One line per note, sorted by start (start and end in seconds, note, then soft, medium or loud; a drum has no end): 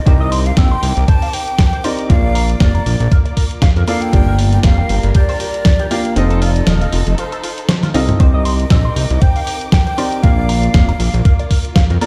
0.00 0.48 D#5 loud
0.06 0.52 C2 loud
0.06 1.81 C4 medium
0.06 2.08 C4 medium
0.06 1.82 D#4 medium
0.06 2.08 D#4 medium
0.06 1.82 G4 medium
0.06 2.08 A#4 medium
0.06 1.82 A#4 medium
0.06 0.14 C5 medium
0.06 4.09 D6 medium
0.06 1.82 D6 medium
0.06 kick loud
0.06 closed hi-hat medium
0.20 0.29 D#5 loud
0.32 0.39 C6 medium
0.32 open hi-hat loud
0.46 0.59 F5 loud
0.46 closed hi-hat medium
0.57 0.76 A#1 loud
0.57 0.68 C4 medium
0.57 1.10 G5 loud
0.57 kick loud
0.57 snare loud
0.57 closed hi-hat medium
0.71 0.80 C6 medium
0.83 0.93 C2 medium
0.83 0.87 C5 medium
0.83 open hi-hat loud
0.97 1.05 C2 loud
0.97 closed hi-hat medium
1.08 1.15 C5 medium
1.08 1.35 A5 loud
1.08 kick loud
1.08 closed hi-hat medium
1.22 1.26 F5 loud
1.22 open hi-hat medium
1.33 1.41 C5 medium
1.33 1.86 G5 loud
1.33 open hi-hat loud
1.48 closed hi-hat soft
1.58 1.66 G5 loud
1.58 kick loud
1.58 snare loud
1.58 closed hi-hat medium
1.73 1.79 C5 medium
1.73 closed hi-hat soft
1.84 2.07 C4 medium
1.84 2.07 D#4 medium
1.84 2.07 G4 medium
1.84 2.07 A#4 medium
1.84 2.08 D5 loud
1.84 2.09 D#5 loud
1.84 1.89 C6 medium
1.84 open hi-hat loud
1.99 closed hi-hat medium
2.09 2.55 A#1 loud
2.09 3.85 A#3 medium
2.09 4.11 A#3 medium
2.09 3.85 D4 medium
2.09 8.16 F4 medium
2.09 3.85 F4 medium
2.09 2.17 A#4 medium
2.09 3.86 D5 loud
2.09 2.63 F5 loud
2.09 kick loud
2.09 closed hi-hat medium
2.24 2.32 D5 loud
2.35 2.42 A#5 medium
2.35 open hi-hat loud
2.49 closed hi-hat medium
2.60 2.80 F1 loud
2.60 2.71 A#3 medium
2.60 3.12 D5 medium
2.60 kick loud
2.60 snare loud
2.60 closed hi-hat medium
2.75 2.83 A#5 medium
2.75 closed hi-hat soft
2.86 2.96 A#1 medium
2.86 2.90 A#4 medium
2.86 open hi-hat loud
3.00 3.08 A#1 loud
3.00 closed hi-hat medium
3.11 3.19 A#4 medium
3.11 kick loud
3.11 closed hi-hat medium
3.25 3.29 D5 loud
3.25 closed hi-hat soft
3.37 3.44 A#4 medium
3.37 kick medium
3.37 open hi-hat loud
3.51 closed hi-hat medium
3.62 3.69 F5 loud
3.62 kick loud
3.62 snare loud
3.62 closed hi-hat medium
3.76 3.85 F2 loud
3.76 3.82 A#4 loud
3.76 closed hi-hat soft
3.87 4.10 A#3 loud
3.87 4.11 D4 medium
3.87 4.11 F4 medium
3.87 4.11 A4 medium
3.87 4.11 D5 loud
3.87 4.03 F5 loud
3.87 3.92 A#5 medium
3.87 open hi-hat loud
4.02 4.52 G5 loud
4.02 closed hi-hat medium
4.12 4.59 G1 loud
4.12 6.14 G3 medium
4.12 5.88 A#3 loud
4.12 5.88 D4 medium
4.12 6.14 D4 medium
4.12 5.89 F4 medium
4.12 4.20 G4 medium
4.12 5.89 G4 medium
4.12 6.14 A#4 medium
4.12 5.89 D5 loud
4.12 kick loud
4.12 closed hi-hat medium
4.27 4.36 A#4 loud
4.38 4.46 G5 medium
4.38 open hi-hat loud
4.53 4.63 G5 loud
4.53 closed hi-hat medium
4.63 4.83 F1 loud
4.63 4.75 G3 medium
4.63 5.11 F5 loud
4.63 kick loud
4.63 snare loud
4.63 closed hi-hat medium
4.78 4.87 G5 medium
4.89 5.00 G1 medium
4.89 4.94 G4 medium
4.89 open hi-hat loud
5.03 5.12 G1 loud
5.03 closed hi-hat medium
5.15 5.22 G4 medium
5.15 5.39 D5 loud
5.15 kick loud
5.15 closed hi-hat medium
5.29 5.32 C5 loud
5.29 open hi-hat medium
5.40 5.47 G4 medium
5.40 5.93 D5 loud
5.40 open hi-hat loud
5.54 closed hi-hat medium
5.65 5.73 D5 loud
5.65 kick loud
5.65 snare loud
5.65 closed hi-hat medium
5.79 5.85 G4 loud
5.79 closed hi-hat soft
5.91 6.14 A#3 medium
5.91 6.14 D4 medium
5.91 6.14 F4 medium
5.91 6.14 G4 medium
5.91 6.14 D5 loud
5.91 6.18 F5 loud
5.91 5.95 G5 medium
5.91 open hi-hat loud
6.05 closed hi-hat medium
6.16 6.62 F1 loud
6.16 7.91 C4 medium
6.16 7.92 D#4 medium
6.16 8.18 D#4 medium
6.16 6.24 F4 medium
6.16 7.92 F4 medium
6.16 8.18 A4 medium
6.16 7.92 A4 medium
6.16 6.44 C5 medium
6.16 7.92 D#5 loud
6.16 closed hi-hat medium
6.30 6.39 A4 loud
6.30 closed hi-hat soft
6.42 6.69 D5 medium
6.42 6.49 F5 medium
6.42 open hi-hat loud
6.56 closed hi-hat medium
6.67 6.86 D#1 loud
6.67 6.78 F3 medium
6.67 7.18 D#5 loud
6.67 snare loud
6.67 closed hi-hat medium
6.81 6.90 F5 medium
6.81 closed hi-hat soft
6.92 7.03 F1 medium
6.92 6.97 F4 medium
6.92 open hi-hat loud
7.07 7.15 F1 loud
7.07 closed hi-hat medium
7.18 7.25 F4 medium
7.18 7.91 C5 medium
7.18 closed hi-hat medium
7.32 7.36 A4 loud
7.32 closed hi-hat soft
7.43 7.51 F4 medium
7.43 open hi-hat loud
7.58 closed hi-hat medium
7.69 7.76 C5 loud
7.69 snare loud
7.69 closed hi-hat medium
7.69 high tom medium
7.83 7.89 F4 loud
7.83 snare soft
7.83 closed hi-hat soft
7.83 high tom medium
7.94 8.13 C2 medium
7.94 8.17 C4 loud
7.94 8.17 D#4 medium
7.94 8.17 F4 medium
7.94 8.17 A4 medium
7.94 8.18 D#5 loud
7.94 7.99 F5 medium
7.94 open hi-hat loud
8.09 closed hi-hat medium
8.09 mid tom medium
8.19 8.66 C2 loud
8.19 9.95 C4 medium
8.19 10.21 C4 medium
8.19 9.95 D#4 medium
8.19 10.21 D#4 medium
8.19 9.95 G4 medium
8.19 10.21 A#4 medium
8.19 9.96 A#4 medium
8.19 8.27 C5 medium
8.19 9.23 D#5 loud
8.19 12.06 D6 medium
8.19 9.96 D6 medium
8.19 kick loud
8.19 closed hi-hat medium
8.34 8.42 D#5 loud
8.45 8.52 C6 medium
8.45 open hi-hat loud
8.60 closed hi-hat medium
8.70 8.90 A#1 loud
8.70 8.81 C4 medium
8.70 kick loud
8.70 snare loud
8.70 closed hi-hat medium
8.85 8.93 C6 medium
8.96 9.06 C2 medium
8.96 9.01 C5 medium
8.96 open hi-hat loud
9.10 9.19 C2 loud
9.10 closed hi-hat medium
9.21 9.29 C5 medium
9.21 9.72 G5 loud
9.21 kick loud
9.21 closed hi-hat medium
9.36 9.39 F5 loud
9.36 open hi-hat medium
9.47 9.54 C5 medium
9.47 open hi-hat loud
9.61 closed hi-hat medium
9.72 10.25 G5 loud
9.72 9.80 G5 loud
9.72 kick loud
9.72 snare loud
9.72 closed hi-hat medium
9.87 9.92 C5 loud
9.87 closed hi-hat soft
9.97 10.20 C4 loud
9.97 10.21 D#4 medium
9.97 10.21 G4 medium
9.97 10.21 A#4 medium
9.97 10.21 D5 loud
9.97 10.02 C6 medium
9.97 open hi-hat loud
10.12 closed hi-hat medium
10.23 10.69 A#1 loud
10.23 11.98 A#3 medium
10.23 12.06 A#3 medium
10.23 11.98 D4 medium
10.23 12.06 F4 medium
10.23 11.99 F4 medium
10.23 10.31 A#4 medium
10.23 11.99 D5 loud
10.23 11.76 F5 loud
10.23 kick loud
10.23 closed hi-hat medium
10.38 10.46 D5 loud
10.49 10.56 A#5 medium
10.49 open hi-hat loud
10.63 closed hi-hat medium
10.74 10.93 F1 loud
10.74 10.85 A#3 medium
10.74 kick loud
10.74 snare loud
10.74 closed hi-hat medium
10.89 10.97 A#5 medium
10.89 closed hi-hat soft
11.00 11.10 A#1 medium
11.00 11.04 A#4 medium
11.00 open hi-hat loud
11.14 11.22 A#1 loud
11.14 closed hi-hat medium
11.25 11.32 A#4 medium
11.25 kick loud
11.25 closed hi-hat medium
11.39 11.43 D5 loud
11.39 closed hi-hat soft
11.51 11.58 A#4 medium
11.51 kick medium
11.51 open hi-hat loud
11.65 closed hi-hat medium
11.76 11.83 F5 loud
11.76 kick loud
11.76 snare loud
11.76 closed hi-hat medium
11.90 11.98 F2 loud
11.90 11.96 A#4 loud
11.90 closed hi-hat soft
12.01 12.06 A#3 loud
12.01 12.06 D4 medium
12.01 12.06 F4 medium
12.01 12.06 A4 medium
12.01 12.06 D5 loud
12.01 12.06 A#5 medium
12.01 open hi-hat loud